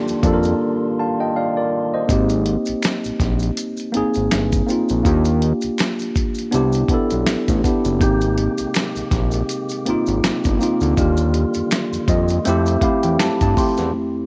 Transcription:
Already playing: tonewheel organ D#3 G3 D4 F4, tine electric piano A#3 D4 F4 G4 A4
0.08 analog synth bass F2, closed hi-hat, maracas
0.23 analog synth bass F2, tine electric piano A#3 D4 F4, kick, closed hi-hat, maracas
0.27 tine electric piano A4
0.34 tine electric piano A#4
0.43 closed hi-hat, maracas
1.00 tine electric piano F5 A5
1.20 tine electric piano D#5 G5
1.36 tine electric piano D5 F5
1.57 tine electric piano A#4 D5
1.94 tine electric piano C5 D#5
2.08 analog synth bass G#1, tine electric piano A#3 C4 D#4, kick, closed hi-hat, maracas
2.12 tine electric piano G4
2.29 closed hi-hat, maracas
2.46 closed hi-hat
2.66 analog synth bass A#1, closed hi-hat, maracas
2.83 finger snap, snare, closed hi-hat, maracas
3.04 analog synth bass A#1, closed hi-hat, maracas
3.20 analog synth bass A#1, kick, snare, closed hi-hat, maracas
3.39 closed hi-hat, maracas
3.57 closed hi-hat, maracas
3.77 closed hi-hat, maracas
3.92 tine electric piano A#3 C4 D#4, closed hi-hat
3.96 analog synth bass G#1, tine electric piano G#4
4.14 analog synth bass G#1, closed hi-hat, maracas
4.31 analog synth bass G1, finger snap, snare, closed hi-hat, maracas
4.52 kick, closed hi-hat, maracas
4.67 tine electric piano A#3 C4 D#4, closed hi-hat, maracas
4.71 tine electric piano F4
4.89 analog synth bass A#1, closed hi-hat, maracas
5.04 analog synth bass D#2, tine electric piano A#3 D4 F4 G4, kick, closed hi-hat, maracas
5.25 closed hi-hat, maracas
5.42 closed hi-hat
5.61 analog synth bass C2, closed hi-hat, maracas
5.78 finger snap, snare, closed hi-hat, maracas
5.99 closed hi-hat, maracas
6.15 kick, closed hi-hat, maracas
6.35 closed hi-hat, maracas
6.51 analog synth bass C2, tine electric piano B3 D4 E4 G4, closed hi-hat, maracas
6.72 closed hi-hat, maracas
6.88 analog synth bass B1, tine electric piano B3 D4 E4, kick, closed hi-hat
6.94 tine electric piano A4
7.10 analog synth bass B1, closed hi-hat, maracas
7.26 analog synth bass A1, finger snap, snare, closed hi-hat, maracas
7.48 analog synth bass A1, kick, closed hi-hat, maracas
7.64 tine electric piano B3 D4 E4, kick, closed hi-hat, maracas
7.68 tine electric piano G4
7.85 analog synth bass F#1, closed hi-hat, maracas
7.99 analog synth bass G#1, tonewheel organ C3 G#3 A#3 G4, tine electric piano A#3 C4 D#4, kick, closed hi-hat, maracas
8.03 tine electric piano G4
8.21 closed hi-hat, maracas
8.38 closed hi-hat
8.58 analog synth bass A#1, closed hi-hat, maracas
8.74 finger snap, snare, closed hi-hat, maracas
8.96 analog synth bass A#1, closed hi-hat, maracas
9.11 analog synth bass A#1, kick, snare, closed hi-hat, maracas
9.31 closed hi-hat, maracas
9.49 closed hi-hat, maracas
9.69 closed hi-hat, maracas
9.86 analog synth bass G#1, tine electric piano A#3 C4 D#4, closed hi-hat
9.90 tine electric piano F4
10.06 analog synth bass G#1, closed hi-hat, maracas
10.24 analog synth bass G1, finger snap, snare, closed hi-hat, maracas
10.44 analog synth bass G1, kick, closed hi-hat, maracas
10.59 tine electric piano A#3 C4 D#4, closed hi-hat, maracas
10.63 tine electric piano F4
10.81 analog synth bass D2, closed hi-hat, maracas
10.96 analog synth bass D#2, tonewheel organ D3 D#3 G3 F4, tine electric piano A#3 D4 F4 G4, kick, closed hi-hat, maracas
11.17 closed hi-hat, maracas
11.34 closed hi-hat
11.54 analog synth bass F2, closed hi-hat, maracas
11.71 finger snap, snare, closed hi-hat, maracas
11.92 analog synth bass F2, closed hi-hat, maracas
12.08 analog synth bass F2, tine electric piano D#5, kick, closed hi-hat, maracas
12.28 closed hi-hat, maracas
12.44 analog synth bass F2, tonewheel organ F3 A3 E4 G4, tine electric piano A3 C4 E4 E5, closed hi-hat, maracas
12.49 tine electric piano G4
12.66 closed hi-hat, maracas
12.81 analog synth bass E2, tine electric piano A3 C4 E4 G4 F5, kick, closed hi-hat
13.03 analog synth bass E2, tine electric piano G5, closed hi-hat, maracas
13.19 analog synth bass G2, tine electric piano A5, finger snap, snare, closed hi-hat, maracas
13.41 analog synth bass G2, tine electric piano A5, kick, closed hi-hat, maracas
13.55 tine electric piano A3 C4 E4 C6, kick, open hi-hat, maracas
13.60 tine electric piano G4
13.77 analog synth bass E2, snare, closed hi-hat, maracas
13.91 tine electric piano F2 A3 C4
13.97 tine electric piano E4 G4

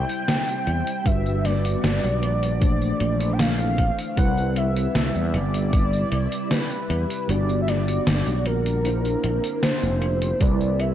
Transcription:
Already playing: string machine C3 G3 E4 C5, tine electric piano G3 C4 E4 C5, soft synth lead G5
0.09 closed hi-hat, tambourine
0.28 snare, closed hi-hat, tambourine
0.48 tambourine
0.67 fretless electric bass E2, closed hi-hat
0.87 closed hi-hat, tambourine
1.04 fretless electric bass G1, string machine D3 B3 F#4, tine electric piano G3 D4 F#4 B4, soft synth lead E5, kick, closed hi-hat, tambourine
1.26 tambourine
1.45 soft synth lead D5, snare, closed hi-hat
1.65 closed hi-hat, tambourine
1.84 fretless electric bass G1, snare, closed hi-hat, tambourine
2.04 fretless electric bass B1, closed hi-hat, tambourine
2.23 fretless electric bass A#1, closed hi-hat
2.43 closed hi-hat, tambourine
2.60 string machine E3 A3 C4, tine electric piano E3 A3 D4 C5, kick, closed hi-hat, tambourine
2.82 tambourine
3.00 fretless electric bass A#1, closed hi-hat
3.20 closed hi-hat, tambourine
3.33 soft synth lead G5
3.39 soft synth lead F5, snare, closed hi-hat, tambourine
3.59 tambourine
3.78 kick, closed hi-hat
3.98 closed hi-hat, tambourine
4.16 fretless electric bass C2, string machine C3 G3 E4, tine electric piano G3 C4 E4 B4, soft synth lead F#5, kick, closed hi-hat, tambourine
4.38 tambourine
4.56 soft synth lead E5, closed hi-hat
4.76 closed hi-hat, tambourine
4.95 fretless electric bass C2, snare, closed hi-hat, tambourine
5.15 fretless electric bass E2, closed hi-hat, tambourine
5.34 fretless electric bass G1, soft synth lead D5, closed hi-hat
5.54 closed hi-hat, tambourine
5.73 kick, closed hi-hat, tambourine
5.93 tambourine
6.12 fretless electric bass C2, closed hi-hat
6.32 closed hi-hat, tambourine
6.51 soft synth lead B4, snare, closed hi-hat, tambourine
6.71 tambourine
6.90 fretless electric bass E2, closed hi-hat
7.10 closed hi-hat, tambourine
7.27 fretless electric bass G1, string machine D3 F#4, tine electric piano G3 B3 D4 F#4, soft synth lead D5, closed hi-hat, tambourine
7.49 tambourine
7.61 soft synth lead E5
7.68 soft synth lead D5, snare, closed hi-hat
7.88 closed hi-hat, tambourine
8.07 fretless electric bass G1, snare, closed hi-hat, tambourine
8.27 fretless electric bass B1, closed hi-hat, tambourine
8.46 fretless electric bass A#1, soft synth lead A#4, closed hi-hat
8.66 closed hi-hat, tambourine
8.83 tine electric piano A#3 D4 E4 C5, string machine A#3 C4 E4, closed hi-hat, tambourine
9.05 closed hi-hat, tambourine
9.24 fretless electric bass A#1, closed hi-hat
9.44 closed hi-hat, tambourine
9.63 soft synth lead C5, snare, closed hi-hat, tambourine
9.83 fretless electric bass F1, tambourine
10.02 closed hi-hat
10.22 closed hi-hat, tambourine
10.39 fretless electric bass C2, string machine C3 G3 B4, tine electric piano G3 C4 E4 B4, soft synth lead D5, kick, closed hi-hat, tambourine
10.61 tambourine
10.79 soft synth lead E5, closed hi-hat

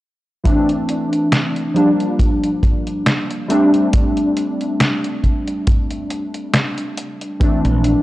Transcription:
0.44 synth keys E3 A3 C4 D4, kick, closed hi-hat
0.69 closed hi-hat
0.89 closed hi-hat
1.13 closed hi-hat
1.32 snare, closed hi-hat
1.56 closed hi-hat
1.74 synth keys F3 G3 A#3 D4, closed hi-hat
2.00 closed hi-hat
2.19 kick, closed hi-hat
2.43 closed hi-hat
2.63 kick, closed hi-hat
2.87 closed hi-hat
3.06 snare, closed hi-hat
3.30 closed hi-hat
3.48 synth keys G3 A3 C4 D4, closed hi-hat
3.74 closed hi-hat
3.93 kick, closed hi-hat
4.17 closed hi-hat
4.37 closed hi-hat
4.61 closed hi-hat
4.80 snare, closed hi-hat
5.04 closed hi-hat
5.24 kick, closed hi-hat
5.47 closed hi-hat
5.67 kick, closed hi-hat
5.91 closed hi-hat
6.10 closed hi-hat
6.34 closed hi-hat
6.54 snare, closed hi-hat
6.78 closed hi-hat
6.98 closed hi-hat
7.21 closed hi-hat
7.40 synth keys E3 A3 C4 D4, muted fretless electric bass stroke, kick, closed hi-hat
7.65 fretless electric bass A#1, closed hi-hat
7.84 closed hi-hat

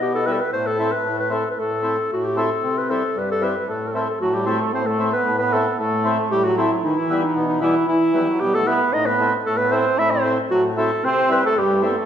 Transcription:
0.00 accordion B2, clarinet G4
0.15 clarinet A4
0.26 accordion G3 B3 E4, clarinet B4
0.32 clarinet A4
0.41 clarinet B4
0.53 accordion A2, clarinet C5
0.67 clarinet A4
0.79 accordion A3 C4 E4
0.92 clarinet B4
1.04 accordion A2
1.19 clarinet B4
1.30 accordion A3 C4 E4, clarinet A4
1.50 clarinet B4
1.58 accordion A2, clarinet A4
1.82 accordion A3 C4 E4
2.11 accordion A2, clarinet F#4
2.24 clarinet G4
2.37 accordion A3 C4 E4, clarinet A4
2.63 accordion C3
2.78 clarinet B4
2.90 accordion G3 C4 E4, clarinet A4
3.16 accordion G2, clarinet B4
3.31 clarinet A4
3.41 accordion G3 C4 E4, clarinet B4
3.67 accordion A2, clarinet A4
3.95 accordion A3 C4 E4
4.20 accordion A2, trombone F#3, clarinet F#4
4.34 trombone G3, clarinet G4
4.46 accordion A3 C4 E4, trombone A3, clarinet A4
4.73 accordion A2, trombone C4, clarinet C5
4.86 trombone A3, clarinet A4
4.99 accordion A3 C4 E4
5.13 trombone B3, clarinet B4
5.27 accordion A2
5.38 trombone B3, clarinet B4
5.53 accordion A3 C4 E4, clarinet A4
5.73 trombone B3
5.79 accordion A2, trombone A3, clarinet A4
6.04 accordion A3 C4 E4
6.30 accordion A2, trombone G3, clarinet G4
6.44 trombone F#3, clarinet F#4
6.57 accordion A3 C4 E4, clarinet E4
6.79 clarinet D#4 E4
6.83 trombone D#3, accordion E3
6.97 trombone E3, clarinet E4
7.10 accordion G3 B3 E4
7.22 clarinet D#4
7.35 accordion B2
7.48 clarinet D#4
7.61 trombone E3, accordion G3 B3 E4, clarinet E4
7.87 trombone E3, accordion E3, clarinet E4
8.14 trombone F#3, accordion G3 B3 E4
8.22 trombone E3
8.28 trombone F#3
8.40 accordion B2, trombone G3, clarinet G4
8.55 trombone A3, clarinet A4
8.66 accordion G3 B3 E4, trombone B3, clarinet B4
8.93 accordion A2, trombone D#4, clarinet D#5
9.06 trombone B3, clarinet B4
9.20 accordion A3 C4 E4
9.45 accordion A2, trombone A3, clarinet A4
9.57 trombone B3, clarinet B4
9.71 accordion A3 C4 E4, trombone C4, clarinet C5
9.98 accordion A2, trombone E4, clarinet E5
10.11 trombone C4, clarinet C5
10.24 accordion A3 C4 E4
10.51 accordion A2, trombone F#3, clarinet F#4
10.77 accordion A3 C4 E4, clarinet A4
11.03 accordion C3, trombone C4, clarinet C5
11.29 accordion G3 C4 E4, clarinet B4
11.44 trombone A3, clarinet A4
11.55 accordion G2, trombone G3, clarinet G4
11.82 accordion G3 C4 E4, trombone A3, clarinet A4
11.89 trombone B3
11.97 trombone A3

